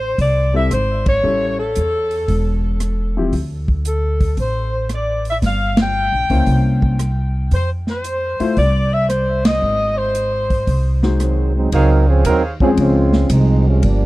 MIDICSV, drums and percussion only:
0, 0, Header, 1, 2, 480
1, 0, Start_track
1, 0, Tempo, 524934
1, 1125, Time_signature, 4, 2, 24, 8
1, 12854, End_track
2, 0, Start_track
2, 0, Title_t, "Drums"
2, 167, Note_on_c, 9, 36, 26
2, 170, Note_on_c, 9, 46, 36
2, 259, Note_off_c, 9, 36, 0
2, 262, Note_off_c, 9, 46, 0
2, 649, Note_on_c, 9, 42, 51
2, 650, Note_on_c, 9, 37, 56
2, 741, Note_off_c, 9, 37, 0
2, 741, Note_off_c, 9, 42, 0
2, 970, Note_on_c, 9, 51, 60
2, 971, Note_on_c, 9, 36, 68
2, 1061, Note_off_c, 9, 51, 0
2, 1062, Note_off_c, 9, 36, 0
2, 1604, Note_on_c, 9, 42, 50
2, 1696, Note_off_c, 9, 42, 0
2, 1928, Note_on_c, 9, 46, 33
2, 2019, Note_off_c, 9, 46, 0
2, 2087, Note_on_c, 9, 36, 27
2, 2088, Note_on_c, 9, 46, 35
2, 2179, Note_off_c, 9, 36, 0
2, 2179, Note_off_c, 9, 46, 0
2, 2562, Note_on_c, 9, 42, 48
2, 2563, Note_on_c, 9, 37, 54
2, 2653, Note_off_c, 9, 42, 0
2, 2654, Note_off_c, 9, 37, 0
2, 3042, Note_on_c, 9, 46, 39
2, 3045, Note_on_c, 9, 36, 31
2, 3134, Note_off_c, 9, 46, 0
2, 3136, Note_off_c, 9, 36, 0
2, 3367, Note_on_c, 9, 36, 50
2, 3459, Note_off_c, 9, 36, 0
2, 3520, Note_on_c, 9, 42, 49
2, 3612, Note_off_c, 9, 42, 0
2, 3845, Note_on_c, 9, 46, 36
2, 3846, Note_on_c, 9, 36, 49
2, 3936, Note_off_c, 9, 46, 0
2, 3937, Note_off_c, 9, 36, 0
2, 3997, Note_on_c, 9, 46, 36
2, 4001, Note_on_c, 9, 36, 26
2, 4088, Note_off_c, 9, 46, 0
2, 4092, Note_off_c, 9, 36, 0
2, 4474, Note_on_c, 9, 42, 45
2, 4475, Note_on_c, 9, 37, 54
2, 4566, Note_off_c, 9, 42, 0
2, 4567, Note_off_c, 9, 37, 0
2, 4801, Note_on_c, 9, 46, 33
2, 4893, Note_off_c, 9, 46, 0
2, 4957, Note_on_c, 9, 46, 41
2, 4958, Note_on_c, 9, 36, 30
2, 4958, Note_on_c, 9, 38, 34
2, 5049, Note_off_c, 9, 36, 0
2, 5049, Note_off_c, 9, 46, 0
2, 5050, Note_off_c, 9, 38, 0
2, 5276, Note_on_c, 9, 51, 56
2, 5277, Note_on_c, 9, 38, 74
2, 5367, Note_off_c, 9, 51, 0
2, 5368, Note_off_c, 9, 38, 0
2, 5760, Note_on_c, 9, 36, 44
2, 5760, Note_on_c, 9, 46, 31
2, 5851, Note_off_c, 9, 36, 0
2, 5852, Note_off_c, 9, 46, 0
2, 5912, Note_on_c, 9, 46, 37
2, 5915, Note_on_c, 9, 36, 24
2, 6003, Note_off_c, 9, 46, 0
2, 6007, Note_off_c, 9, 36, 0
2, 6239, Note_on_c, 9, 36, 58
2, 6331, Note_off_c, 9, 36, 0
2, 6394, Note_on_c, 9, 42, 47
2, 6395, Note_on_c, 9, 37, 62
2, 6486, Note_off_c, 9, 42, 0
2, 6487, Note_off_c, 9, 37, 0
2, 6869, Note_on_c, 9, 46, 39
2, 6873, Note_on_c, 9, 36, 29
2, 6961, Note_off_c, 9, 46, 0
2, 6964, Note_off_c, 9, 36, 0
2, 7196, Note_on_c, 9, 38, 30
2, 7288, Note_off_c, 9, 38, 0
2, 7355, Note_on_c, 9, 42, 50
2, 7446, Note_off_c, 9, 42, 0
2, 7681, Note_on_c, 9, 46, 34
2, 7772, Note_off_c, 9, 46, 0
2, 7834, Note_on_c, 9, 46, 34
2, 7836, Note_on_c, 9, 36, 28
2, 7925, Note_off_c, 9, 46, 0
2, 7927, Note_off_c, 9, 36, 0
2, 8318, Note_on_c, 9, 42, 51
2, 8319, Note_on_c, 9, 37, 58
2, 8410, Note_off_c, 9, 37, 0
2, 8410, Note_off_c, 9, 42, 0
2, 8640, Note_on_c, 9, 51, 65
2, 8641, Note_on_c, 9, 38, 73
2, 8732, Note_off_c, 9, 51, 0
2, 8733, Note_off_c, 9, 38, 0
2, 9278, Note_on_c, 9, 42, 50
2, 9370, Note_off_c, 9, 42, 0
2, 9603, Note_on_c, 9, 36, 46
2, 9604, Note_on_c, 9, 46, 33
2, 9695, Note_off_c, 9, 36, 0
2, 9695, Note_off_c, 9, 46, 0
2, 9758, Note_on_c, 9, 36, 28
2, 9759, Note_on_c, 9, 46, 38
2, 9850, Note_off_c, 9, 36, 0
2, 9851, Note_off_c, 9, 46, 0
2, 10085, Note_on_c, 9, 38, 41
2, 10176, Note_off_c, 9, 38, 0
2, 10241, Note_on_c, 9, 42, 52
2, 10242, Note_on_c, 9, 37, 59
2, 10332, Note_off_c, 9, 42, 0
2, 10333, Note_off_c, 9, 37, 0
2, 10719, Note_on_c, 9, 51, 57
2, 10720, Note_on_c, 9, 36, 20
2, 10810, Note_off_c, 9, 51, 0
2, 10811, Note_off_c, 9, 36, 0
2, 11198, Note_on_c, 9, 44, 57
2, 11198, Note_on_c, 9, 51, 66
2, 11200, Note_on_c, 9, 36, 25
2, 11289, Note_off_c, 9, 44, 0
2, 11289, Note_off_c, 9, 51, 0
2, 11291, Note_off_c, 9, 36, 0
2, 11525, Note_on_c, 9, 36, 66
2, 11616, Note_off_c, 9, 36, 0
2, 11680, Note_on_c, 9, 36, 21
2, 11681, Note_on_c, 9, 51, 56
2, 11772, Note_off_c, 9, 36, 0
2, 11772, Note_off_c, 9, 51, 0
2, 12006, Note_on_c, 9, 38, 50
2, 12098, Note_off_c, 9, 38, 0
2, 12157, Note_on_c, 9, 44, 52
2, 12157, Note_on_c, 9, 51, 67
2, 12160, Note_on_c, 9, 36, 19
2, 12248, Note_off_c, 9, 44, 0
2, 12248, Note_off_c, 9, 51, 0
2, 12251, Note_off_c, 9, 36, 0
2, 12641, Note_on_c, 9, 36, 25
2, 12643, Note_on_c, 9, 51, 54
2, 12733, Note_off_c, 9, 36, 0
2, 12734, Note_off_c, 9, 51, 0
2, 12854, End_track
0, 0, End_of_file